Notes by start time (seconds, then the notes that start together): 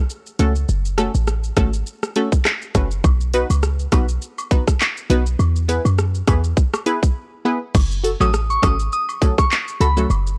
0.10 shaker
0.26 shaker
0.39 C#2 A3 C#4 F#4 A4, closed hi-hat, shaker
0.55 shaker
0.69 F#1, shaker
0.85 shaker
0.98 A3 C#4 F#4 A4, cross-stick, closed hi-hat, shaker
1.15 A1, shaker
1.27 cross-stick, shaker
1.44 shaker
1.57 G#1 A3 C#4 F#4 A4, kick, cross-stick, closed hi-hat, shaker
1.73 shaker
1.86 shaker
2.03 cross-stick, shaker
2.16 A3 C#4 F#4 A4, closed hi-hat, shaker
2.32 kick, shaker
2.45 cross-stick, clap, shaker
2.62 shaker
2.75 F#1 A3 C#4 F#4 B4, kick, cross-stick, closed hi-hat, shaker
2.91 shaker
3.04 B1, kick, high woodblock, shaker
3.21 shaker
3.33 B3 D#4 F#4 B4, closed hi-hat, cabasa, shaker
3.50 C#2, high woodblock, shaker
3.63 cross-stick, shaker
3.79 shaker
3.92 B1 B3 D#4 F#4 B4, kick, cross-stick, closed hi-hat, cabasa, high woodblock, shaker
4.09 shaker
4.22 shaker
4.38 high woodblock, shaker
4.51 B3 D#4 F#4 B4, kick, closed hi-hat, cabasa, shaker
4.68 kick, cross-stick, shaker
4.81 clap, high woodblock, shaker
4.97 shaker
5.10 B1 B3 D#4 F#4 B4, closed hi-hat, cabasa, shaker
5.26 shaker
5.39 E2, high woodblock, shaker
5.56 shaker
5.68 B3 E4 G#4 B4, closed hi-hat, cabasa, shaker
5.85 F#2, high woodblock, shaker
5.98 cross-stick, shaker
6.15 shaker
6.27 E2 B3 E4 G#4 B4, kick, cross-stick, closed hi-hat, cabasa, high woodblock, shaker
6.44 shaker
6.57 kick, shaker
6.74 cross-stick, high woodblock, shaker
6.86 B3 E4 G#4 B4, closed hi-hat, cabasa, shaker
7.03 kick, shaker
7.45 B3 E4 G#4 B4
7.75 F#1, kick, crash, high woodblock, shaker
7.91 shaker
8.03 F#4 A4, closed hi-hat, cabasa, shaker
8.20 A1 F#3 A3 C#4 F#4 A4 D#6, high woodblock, shaker
8.34 cross-stick, shaker
8.50 C#6, shaker
8.62 G#1 F#3 A3 C#4 F#4 A4 D#6, kick, cross-stick, closed hi-hat, cabasa, high woodblock, shaker
8.79 shaker
8.92 D#6, shaker
9.09 high woodblock, shaker
9.21 F#3 A3 C#4 F#4 A4, kick, closed hi-hat, cabasa, shaker
9.38 C#6, kick, cross-stick, shaker
9.52 clap, high woodblock, shaker
9.68 shaker
9.80 C#2 F#4 A4 B5, closed hi-hat, cabasa, shaker
9.97 F#3 A3 C#4 F#4 A4, shaker
10.10 F#1, high woodblock, shaker
10.27 shaker